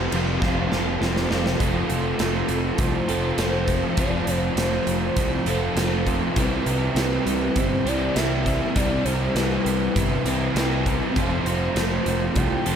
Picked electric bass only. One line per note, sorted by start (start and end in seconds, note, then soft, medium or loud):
0.13 0.37 F1 medium
0.42 0.66 F1 medium
0.72 0.96 F1 medium
1.01 1.25 F1 medium
1.31 1.55 F1 loud
1.60 1.82 F1 medium
1.90 2.12 F1 medium
2.20 2.42 F1 loud
2.49 2.71 F1 medium
2.79 3.01 C2 medium
3.09 3.31 F1 medium
3.38 3.82 F1 medium
3.97 4.19 F1 loud
4.27 4.49 F1 medium
4.56 4.79 F1 medium
4.87 5.09 F1 medium
5.17 5.39 C2 medium
5.46 5.68 F1 medium
5.76 6.20 F1 medium
6.37 6.58 C2 medium
6.66 6.88 C2 medium
6.95 7.17 C2 medium
7.26 7.48 C2 medium
7.56 7.78 G1 medium
7.85 8.07 C2 medium
8.16 8.60 C2 medium
8.76 8.98 C2 medium
9.05 9.27 C2 medium
9.35 9.57 C2 medium
9.65 9.88 C2 medium
9.96 10.18 G1 medium
10.25 10.47 C2 medium
10.55 10.99 C2 medium
11.16 11.38 F1 medium
11.45 11.68 F1 medium
11.76 11.98 F1 medium
12.06 12.28 F1 medium
12.36 12.58 C2 medium
12.67 12.76 F1 medium